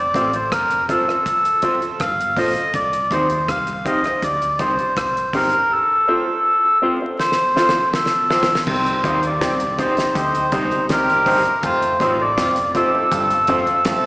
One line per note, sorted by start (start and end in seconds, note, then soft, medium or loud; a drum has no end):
0.00 0.12 F1 medium
0.00 0.35 D5 loud
0.14 0.49 A1 medium
0.14 0.29 C4 medium
0.14 0.30 C4 medium
0.14 0.29 F4 medium
0.14 0.30 F4 medium
0.14 0.30 A4 medium
0.14 0.30 C5 loud
0.14 0.30 C5 medium
0.14 kick medium
0.14 closed hi-hat medium
0.33 0.51 C5 medium
0.33 closed hi-hat soft
0.52 0.86 F1 medium
0.52 0.86 A#4 medium
0.52 kick loud
0.52 cross-stick loud
0.52 closed hi-hat medium
0.71 muted clean electric guitar stroke medium
0.71 closed hi-hat soft
0.89 1.03 C4 medium
0.89 1.04 C4 medium
0.89 1.03 F4 medium
0.89 1.04 F4 medium
0.89 1.04 A4 medium
0.89 2.04 A4 medium
0.89 1.04 A4 medium
0.89 1.04 C5 loud
0.89 1.04 C5 medium
0.89 kick medium
0.89 closed hi-hat medium
1.08 1.21 C4 medium
1.08 1.22 F4 medium
1.08 1.22 A4 medium
1.08 1.22 C5 medium
1.08 cross-stick medium
1.26 kick loud
1.26 closed hi-hat medium
1.45 closed hi-hat soft
1.62 1.77 C4 medium
1.62 1.78 C4 medium
1.62 1.77 F4 medium
1.62 1.78 F4 medium
1.62 1.78 A4 medium
1.62 1.78 C5 loud
1.62 1.78 C5 medium
1.62 kick medium
1.62 closed hi-hat medium
1.82 muted clean electric guitar stroke soft
1.82 closed hi-hat soft
2.00 2.35 G1 medium
2.00 2.39 F5 loud
2.00 kick loud
2.00 cross-stick loud
2.00 closed hi-hat medium
2.20 closed hi-hat soft
2.37 2.55 A#1 medium
2.37 2.52 C4 medium
2.37 2.51 C4 medium
2.37 2.52 F4 medium
2.37 2.52 A4 medium
2.37 2.52 C5 loud
2.37 2.52 C5 medium
2.37 2.76 D#5 loud
2.37 kick medium
2.37 open hi-hat medium
2.56 2.64 A4 soft
2.56 2.64 C5 soft
2.56 closed hi-hat soft
2.74 3.09 C2 medium
2.74 3.13 D5 loud
2.74 kick loud
2.74 closed hi-hat medium
2.93 closed hi-hat soft
3.11 3.46 D#2 medium
3.11 3.26 C4 medium
3.11 3.26 D#4 medium
3.11 3.26 G4 medium
3.11 3.27 G4 medium
3.11 3.50 C5 loud
3.11 3.26 C5 medium
3.11 3.27 C5 loud
3.11 kick medium
3.11 closed hi-hat medium
3.30 closed hi-hat soft
3.48 3.83 C2 medium
3.48 3.87 F5 loud
3.48 kick loud
3.48 cross-stick loud
3.48 closed hi-hat medium
3.67 muted clean electric guitar stroke medium
3.67 closed hi-hat soft
3.85 4.00 C4 medium
3.85 4.00 D#4 medium
3.85 4.00 G4 medium
3.85 4.01 C5 medium
3.85 4.00 C5 loud
3.85 4.24 D#5 medium
3.85 kick medium
3.85 closed hi-hat medium
4.04 4.18 C4 medium
4.04 4.18 D#4 medium
4.04 4.19 G4 medium
4.04 4.19 C5 medium
4.04 cross-stick medium
4.04 closed hi-hat soft
4.22 4.57 D2 medium
4.22 4.61 D5 loud
4.22 kick loud
4.22 closed hi-hat medium
4.42 closed hi-hat soft
4.59 4.77 C2 medium
4.59 4.74 C4 medium
4.59 4.74 D#4 medium
4.59 4.75 G4 medium
4.59 4.74 G4 medium
4.59 4.75 C5 medium
4.59 4.96 C5 medium
4.59 4.75 C5 loud
4.59 kick medium
4.59 closed hi-hat medium
4.78 muted clean electric guitar stroke soft
4.78 closed hi-hat soft
4.97 5.31 C2 medium
4.97 5.35 C5 medium
4.97 kick loud
4.97 cross-stick loud
4.97 closed hi-hat medium
5.17 closed hi-hat soft
5.33 5.51 G1 medium
5.33 5.48 C4 medium
5.33 5.49 C4 medium
5.33 5.48 D#4 medium
5.33 5.49 D#4 medium
5.33 5.49 G4 medium
5.33 5.72 A#4 medium
5.33 5.49 C5 medium
5.33 kick medium
5.33 open hi-hat medium
5.53 5.60 G4 soft
5.53 5.60 C5 soft
5.53 closed hi-hat soft
5.72 6.78 A4 medium
6.08 6.22 C4 medium
6.08 6.23 C4 medium
6.08 6.23 F4 medium
6.08 6.23 A4 medium
6.08 6.23 C5 medium
6.08 6.23 C5 loud
6.65 muted clean electric guitar stroke soft
6.82 6.96 C4 medium
6.82 6.97 C4 medium
6.82 6.97 F4 medium
6.82 6.97 A4 medium
6.82 6.97 C5 medium
7.01 7.15 C4 medium
7.01 7.15 F4 medium
7.01 7.15 A4 medium
7.01 7.15 C5 medium
7.19 7.89 C5 loud
7.19 snare medium
7.32 snare soft
7.56 7.71 C4 medium
7.56 7.71 F4 medium
7.56 7.71 A4 medium
7.56 7.71 C5 loud
7.56 7.72 C5 medium
7.56 snare medium
7.69 snare medium
7.75 muted clean electric guitar stroke soft
7.94 8.70 A4 medium
7.94 snare medium
8.06 snare medium
8.30 8.45 C4 medium
8.30 8.45 F4 medium
8.30 8.45 A4 medium
8.30 8.46 A4 medium
8.30 8.45 C5 medium
8.30 8.46 C5 medium
8.30 snare medium
8.43 snare medium
8.50 8.57 A4 soft
8.50 8.57 C5 soft
8.55 snare medium
8.67 9.02 C2 loud
8.67 8.89 C3 medium
8.67 8.97 D#3 medium
8.67 8.97 G3 medium
8.67 8.97 C4 loud
8.67 9.21 C5 loud
8.67 kick loud
8.67 crash loud
8.86 closed hi-hat soft
9.04 9.39 D#2 loud
9.04 9.26 D#3 medium
9.04 9.34 D#3 medium
9.04 9.34 G3 medium
9.04 9.34 A#3 medium
9.04 9.19 C4 medium
9.04 9.19 D#4 medium
9.04 9.19 G4 medium
9.04 9.20 G4 medium
9.04 9.19 C5 loud
9.04 9.20 C5 medium
9.04 kick loud
9.04 closed hi-hat medium
9.23 9.81 D5 medium
9.23 closed hi-hat soft
9.41 9.76 C2 medium
9.41 9.63 C3 medium
9.41 9.57 D#3 medium
9.41 9.57 G3 medium
9.41 9.56 C4 loud
9.41 kick loud
9.41 snare loud
9.41 closed hi-hat medium
9.60 closed hi-hat medium
9.78 10.08 D#3 medium
9.78 10.08 G3 medium
9.78 9.93 C4 medium
9.78 10.08 C4 medium
9.78 9.93 C4 medium
9.78 10.08 D#4 medium
9.78 9.93 D#4 medium
9.78 9.94 D#4 medium
9.78 9.93 G4 medium
9.78 9.94 G4 medium
9.78 9.93 C5 loud
9.78 9.94 C5 medium
9.78 10.16 C5 medium
9.78 kick loud
9.78 closed hi-hat medium
9.97 10.11 C4 medium
9.97 10.11 D#4 medium
9.97 10.11 G4 medium
9.97 10.12 C5 medium
9.97 snare medium
9.97 closed hi-hat soft
10.15 10.50 D2 loud
10.15 10.38 D3 loud
10.15 10.45 C4 medium
10.15 10.45 D#4 medium
10.15 10.45 G4 medium
10.15 10.86 C5 medium
10.15 10.45 D#5 medium
10.15 kick loud
10.15 closed hi-hat medium
10.35 closed hi-hat medium
10.52 10.70 C2 loud
10.52 10.64 C3 medium
10.52 10.82 D#3 medium
10.52 10.82 G3 medium
10.52 10.67 C4 medium
10.52 10.82 C4 medium
10.52 10.67 C4 medium
10.52 10.82 D#4 medium
10.52 10.67 D#4 medium
10.52 10.68 D#4 medium
10.52 10.67 G4 medium
10.52 10.68 G4 medium
10.52 10.68 C5 loud
10.52 10.68 C5 medium
10.52 kick loud
10.52 closed hi-hat medium
10.71 10.83 C4 medium
10.71 10.83 D#4 medium
10.71 10.83 G4 medium
10.71 10.82 C5 medium
10.71 closed hi-hat soft
10.89 11.24 C2 loud
10.89 11.12 C3 medium
10.89 11.42 G3 medium
10.89 11.42 C4 medium
10.89 11.42 D#4 medium
10.89 11.42 G4 loud
10.89 11.67 A#4 medium
10.89 kick loud
10.89 snare loud
10.89 closed hi-hat loud
11.10 closed hi-hat soft
11.26 11.44 G1 medium
11.26 11.38 G2 medium
11.26 11.41 C4 medium
11.26 11.41 D#4 medium
11.26 11.42 D#4 medium
11.26 11.42 G4 loud
11.26 11.41 G4 medium
11.26 11.42 C5 loud
11.26 11.42 C5 medium
11.26 kick medium
11.26 open hi-hat medium
11.45 11.53 G4 soft
11.45 11.53 C5 soft
11.45 closed hi-hat soft
11.63 11.98 F1 loud
11.63 11.86 F2 medium
11.63 11.93 F3 medium
11.63 11.93 A3 loud
11.63 11.93 C4 loud
11.63 11.93 F4 loud
11.63 12.22 C5 medium
11.63 kick loud
11.63 closed hi-hat medium
11.82 closed hi-hat medium
12.00 12.35 A1 medium
12.00 12.23 A2 medium
12.00 12.30 D#3 medium
12.00 12.30 A3 medium
12.00 12.30 C4 medium
12.00 12.15 C4 medium
12.00 12.16 C4 medium
12.00 12.30 D#4 medium
12.00 12.15 F4 medium
12.00 12.16 F4 medium
12.00 12.16 A4 medium
12.00 12.16 A4 loud
12.00 12.16 C5 loud
12.00 12.16 C5 medium
12.00 kick loud
12.00 closed hi-hat medium
12.21 12.72 D5 medium
12.37 12.72 F1 medium
12.37 12.60 F2 medium
12.37 12.53 F3 medium
12.37 12.53 A3 medium
12.37 12.53 C4 medium
12.37 12.53 F4 loud
12.37 kick loud
12.37 snare loud
12.37 closed hi-hat loud
12.56 closed hi-hat medium
12.74 13.04 G3 medium
12.74 13.04 C4 medium
12.74 12.89 C4 loud
12.74 12.90 C4 medium
12.74 13.04 D#4 medium
12.74 12.89 F4 medium
12.74 12.90 F4 medium
12.74 13.04 G4 medium
12.74 12.90 A4 medium
12.74 13.85 A4 loud
12.74 12.90 A4 medium
12.74 12.90 C5 loud
12.74 12.90 C5 medium
12.74 kick medium
12.74 closed hi-hat medium
12.94 13.08 C4 medium
12.94 13.08 F4 medium
12.94 13.08 A4 medium
13.11 13.46 G1 medium
13.11 13.34 G2 loud
13.11 13.41 A3 medium
13.11 13.41 C4 medium
13.11 13.41 F4 medium
13.11 13.41 A4 loud
13.11 kick loud
13.11 closed hi-hat medium
13.30 closed hi-hat soft
13.47 13.66 F1 loud
13.47 13.60 F2 medium
13.47 13.78 F3 medium
13.47 13.78 A3 medium
13.47 13.78 C4 medium
13.47 13.63 C4 loud
13.47 13.64 C4 medium
13.47 13.78 F4 medium
13.47 13.64 F4 medium
13.47 13.64 A4 medium
13.47 13.64 A4 loud
13.47 13.64 C5 loud
13.47 kick medium
13.47 closed hi-hat medium
13.67 closed hi-hat soft
13.85 14.06 F1 loud
13.85 14.06 F2 medium
13.85 14.06 A3 loud
13.85 14.06 C4 loud
13.85 14.06 F4 loud
13.85 14.06 A4 loud
13.85 14.06 A4 medium
13.85 kick loud
13.85 snare loud
13.85 closed hi-hat loud